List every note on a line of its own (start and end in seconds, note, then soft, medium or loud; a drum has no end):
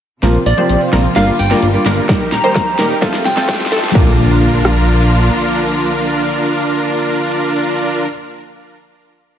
0.22 0.37 A#1 loud
0.22 1.15 C3 medium
0.22 0.35 F3 medium
0.22 1.15 F3 medium
0.22 0.35 A#3 medium
0.22 2.07 A#3 medium
0.22 0.51 C4 medium
0.22 0.35 C4 medium
0.22 2.07 F4 medium
0.22 0.51 F4 medium
0.22 0.36 F4 medium
0.22 0.51 A#4 medium
0.22 snare soft
0.22 closed hi-hat medium
0.22 riser medium
0.35 closed hi-hat soft
0.46 0.53 A#1 medium
0.46 0.81 D5 medium
0.46 open hi-hat loud
0.57 0.77 F3 medium
0.57 0.78 A#3 medium
0.57 0.90 C4 medium
0.57 0.78 C4 medium
0.57 0.90 F4 medium
0.57 0.78 G4 medium
0.57 0.90 C5 medium
0.57 closed hi-hat soft
0.69 0.77 A#1 medium
0.69 closed hi-hat loud
0.81 closed hi-hat soft
0.92 1.07 A#1 loud
0.92 1.12 F3 medium
0.92 1.12 A#3 medium
0.92 1.10 C4 medium
0.92 1.13 C4 medium
0.92 1.10 F4 medium
0.92 1.13 F4 medium
0.92 1.10 A#4 medium
0.92 1.10 A#4 loud
0.92 snare medium
0.92 open hi-hat loud
1.04 closed hi-hat soft
1.15 1.30 G1 loud
1.15 2.08 D3 medium
1.15 1.36 G3 medium
1.15 3.00 G3 medium
1.15 1.33 G3 medium
1.15 1.36 A#3 medium
1.15 1.33 A#3 medium
1.15 1.33 D4 medium
1.15 1.36 D4 medium
1.15 1.33 F4 medium
1.15 1.36 F4 loud
1.15 1.33 A#4 medium
1.15 1.33 A#4 loud
1.15 1.29 F5 medium
1.15 snare medium
1.15 closed hi-hat medium
1.28 closed hi-hat soft
1.39 1.54 G1 medium
1.39 1.52 G5 medium
1.39 open hi-hat loud
1.50 1.63 G3 medium
1.50 1.68 G3 medium
1.50 1.63 A#3 medium
1.50 1.68 A#3 medium
1.50 1.68 D4 medium
1.50 1.63 D4 medium
1.50 1.68 F4 medium
1.50 1.64 F4 loud
1.50 1.68 A#4 medium
1.50 snare medium
1.50 closed hi-hat soft
1.62 1.77 G1 medium
1.62 closed hi-hat medium
1.73 1.86 G3 medium
1.73 1.86 A#3 medium
1.73 1.87 D4 medium
1.73 1.87 F4 medium
1.73 closed hi-hat soft
1.86 2.00 G1 loud
1.86 2.06 G3 medium
1.86 2.06 A#3 medium
1.86 2.06 D4 medium
1.86 2.06 F4 medium
1.86 2.06 A#4 loud
1.86 snare medium
1.86 open hi-hat loud
1.97 closed hi-hat soft
2.08 2.24 D#1 loud
2.08 3.01 D#3 medium
2.08 2.21 G3 medium
2.08 2.21 A#3 medium
2.08 3.01 A#3 medium
2.08 2.22 D#4 medium
2.08 3.01 G4 medium
2.08 2.22 G4 medium
2.08 2.37 A#4 medium
2.08 kick loud
2.08 snare medium
2.08 closed hi-hat medium
2.21 closed hi-hat soft
2.32 2.40 D#1 medium
2.32 2.97 A#5 loud
2.32 snare medium
2.32 open hi-hat loud
2.43 2.63 G3 medium
2.43 2.64 A#3 medium
2.43 2.76 D#4 medium
2.43 2.64 D#4 medium
2.43 2.76 G4 medium
2.43 2.64 A#4 medium
2.43 2.76 C5 medium
2.43 closed hi-hat soft
2.55 2.63 D#1 medium
2.55 kick loud
2.55 snare medium
2.55 closed hi-hat medium
2.67 closed hi-hat soft
2.78 2.93 D#1 loud
2.78 2.98 G3 medium
2.78 2.98 A#3 medium
2.78 2.96 D#4 medium
2.78 2.99 D#4 medium
2.78 2.96 G4 medium
2.78 2.99 G4 medium
2.78 2.96 A#4 loud
2.78 snare medium
2.78 open hi-hat loud
2.90 closed hi-hat soft
3.01 3.17 F1 loud
3.01 3.94 C3 medium
3.01 3.22 F3 loud
3.01 3.94 F3 medium
3.01 3.22 A3 medium
3.01 3.94 A3 medium
3.01 3.20 C4 medium
3.01 3.22 C4 medium
3.01 3.94 F4 medium
3.01 3.20 F4 medium
3.01 3.22 F4 loud
3.01 3.19 A4 loud
3.01 3.20 A4 loud
3.01 kick loud
3.01 snare medium
3.01 closed hi-hat medium
3.14 snare medium
3.14 closed hi-hat soft
3.25 3.40 F1 medium
3.25 3.90 G5 medium
3.25 snare loud
3.25 open hi-hat loud
3.36 3.49 F3 loud
3.36 3.49 A3 medium
3.36 3.54 C4 medium
3.36 3.49 C4 medium
3.36 3.54 F4 medium
3.36 3.50 F4 loud
3.36 3.54 A4 medium
3.36 snare medium
3.36 closed hi-hat soft
3.49 3.63 F1 medium
3.49 kick loud
3.49 snare loud
3.49 closed hi-hat medium
3.54 snare medium
3.60 3.72 F3 medium
3.60 3.72 A3 medium
3.60 3.73 C4 medium
3.60 3.73 F4 medium
3.60 snare medium
3.60 closed hi-hat soft
3.66 snare loud
3.72 3.86 F1 loud
3.72 3.92 C4 medium
3.72 3.92 F4 medium
3.72 3.92 A4 loud
3.72 snare loud
3.72 open hi-hat loud
3.78 snare medium
3.83 snare loud
3.83 closed hi-hat soft
3.89 8.05 F3 medium
3.89 snare loud
3.94 5.31 A#1 medium
3.94 8.07 D3 medium
3.94 8.07 F3 medium
3.94 8.06 A#3 medium
3.94 8.07 A#3 medium
3.94 8.07 D4 medium
3.94 8.06 F4 medium
3.94 8.07 F4 medium
3.94 8.08 F4 loud
3.94 8.07 A#4 loud
3.94 kick loud
3.94 crash medium
3.94 impact medium
4.65 cross-stick medium